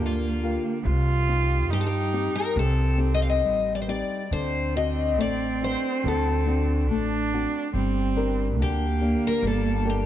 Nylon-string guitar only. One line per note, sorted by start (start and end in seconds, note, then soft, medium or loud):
0.00 0.83 D3 medium
0.00 0.26 F4 soft
0.00 0.27 G4 soft
0.00 0.27 A#4 soft
0.43 0.77 F4 soft
0.43 0.77 G4 soft
0.43 0.77 A#4 soft
0.84 1.67 C3 medium
1.29 1.97 C4 soft
1.29 1.97 D#4 soft
1.29 1.98 G4 soft
1.71 2.55 G3 medium
2.13 2.83 C4 soft
2.13 2.83 D#4 soft
2.13 2.83 G4 medium
2.56 3.41 C3 medium
2.98 3.69 C4 soft
2.98 3.69 D#4 soft
2.98 3.70 G4 soft
3.45 4.29 G3 medium
3.88 4.23 C4 soft
3.88 4.22 D#4 soft
3.88 4.23 G4 soft
4.32 5.16 D3 medium
4.76 5.45 C4 soft
4.76 5.45 D4 soft
4.76 5.45 F#4 soft
5.18 6.02 A3 medium
5.61 6.30 C4 soft
5.61 6.31 D4 soft
5.61 6.31 F#4 soft
6.05 6.88 D3 medium
6.46 7.15 C4 soft
6.46 7.15 D4 soft
6.46 7.15 F#4 medium
6.91 7.73 A3 medium
7.33 7.67 C4 soft
7.33 7.67 D4 soft
7.33 7.67 F#4 medium
7.74 8.57 G3 medium
8.16 8.84 D4 soft
8.16 8.84 G4 soft
8.16 8.85 A#4 medium
8.59 9.41 D3 medium
9.01 9.69 A#3 soft
9.01 9.69 D4 soft
9.01 9.69 G4 soft
9.43 10.06 G3 medium
9.84 10.06 D4 soft
9.84 10.06 G4 soft
9.84 10.06 A#4 soft